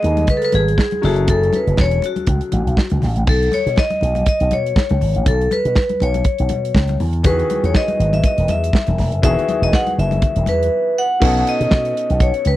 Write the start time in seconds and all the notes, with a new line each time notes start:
Already playing: G#3 G#4 B4 D#5 E5 F#5
0.03 D#2, closed hi-hat, muted conga
0.17 closed hi-hat, high conga
0.27 B4, kick, closed hi-hat, low conga
0.37 A4
0.42 B4, closed hi-hat
0.52 G#1 G#4, closed hi-hat, muted conga, high conga
0.68 closed hi-hat
0.78 kick, snare, muted conga
0.91 closed hi-hat, high conga
1.01 F#1 F#3 C#4 E4 F#4 G#4 A4, snare, open hi-hat, muted conga, low conga
1.16 closed hi-hat
1.28 F#1 A4, kick, closed hi-hat, muted conga, low conga
1.43 closed hi-hat
1.53 B4, closed hi-hat, muted conga, high conga
1.67 F#1, closed hi-hat
1.77 E1 C#5, kick, snare, muted conga
1.91 closed hi-hat
2.02 F#4, closed hi-hat, muted conga
2.16 closed hi-hat, high conga
2.27 C#2, kick, closed hi-hat, muted conga, low conga
2.41 closed hi-hat
2.52 A1, closed hi-hat, muted conga, high conga
2.67 B1, closed hi-hat
2.77 kick, snare
2.90 C#2, closed hi-hat, high conga
3.02 A1, snare, open hi-hat, muted conga, low conga
3.16 A1, closed hi-hat
3.27 B1 A4, kick, crash, low conga
3.42 closed hi-hat
3.52 C#5, closed hi-hat, muted conga, high conga
3.66 B2, closed hi-hat
3.76 D#5, kick, snare, muted conga
3.90 closed hi-hat, high conga
4.01 B1, closed hi-hat, muted conga
4.15 closed hi-hat, high conga
4.26 D#5, kick, closed hi-hat, muted conga
4.40 B1, closed hi-hat
4.51 B2 C#5, closed hi-hat, high conga
4.66 closed hi-hat
4.76 kick, snare, muted conga
4.89 C#2, closed hi-hat, high conga
5.01 G#1, open hi-hat, low conga
5.15 A1, closed hi-hat
5.26 B1 A4, kick, closed hi-hat, low conga
5.41 closed hi-hat
5.51 B4, closed hi-hat, muted conga, high conga
5.65 B2, closed hi-hat
5.75 kick, snare, muted conga
5.89 closed hi-hat, high conga
6.00 B1 C#5, closed hi-hat, muted conga
6.14 closed hi-hat, high conga
6.24 kick, closed hi-hat
6.38 B1, closed hi-hat
6.49 B2, closed hi-hat, high conga
6.65 closed hi-hat
6.75 C#2, kick, snare
6.87 closed hi-hat, high conga
7.00 E2, open hi-hat, muted conga, low conga
7.13 closed hi-hat
7.23 D#3 E3 B3 F#4 G#4 B4, kick, closed hi-hat, muted conga, low conga
7.39 closed hi-hat
7.50 closed hi-hat, muted conga, high conga
7.63 E2 C#5, closed hi-hat
7.74 D#5, kick, snare, muted conga
7.88 closed hi-hat, high conga
7.99 G#1, closed hi-hat
8.13 E5, closed hi-hat, high conga
8.23 D#5, kick, closed hi-hat, muted conga
8.38 E1, closed hi-hat
8.48 E2 E5, closed hi-hat, muted conga, high conga
8.64 closed hi-hat
8.73 kick, snare, muted conga
8.86 E1, closed hi-hat, high conga
8.98 E1, snare, open hi-hat, muted conga, low conga
9.12 F#1, closed hi-hat
9.22 E1 D#3 E3 B3 F#4 G#4 E5, kick, closed hi-hat, low conga
9.39 closed hi-hat
9.48 closed hi-hat, muted conga, high conga
9.62 E1 D#5, closed hi-hat
9.73 F#5, kick, snare
9.87 closed hi-hat, high conga
9.98 F#1 E5, closed hi-hat
10.11 closed hi-hat, high conga
10.22 kick, closed hi-hat, low conga
10.36 E1, closed hi-hat
10.46 E2 B4, closed hi-hat, muted conga, high conga
10.63 closed hi-hat
10.98 F#5
11.20 B1 B2 B3 C#4 D#4 A4, kick, crash
11.37 closed hi-hat
11.47 D#5, closed hi-hat
11.61 B2, closed hi-hat
11.71 B2, kick, snare
11.85 closed hi-hat
11.97 closed hi-hat
12.10 B1, closed hi-hat
12.20 C#5, kick, closed hi-hat
12.34 closed hi-hat
12.45 C#2 B4, closed hi-hat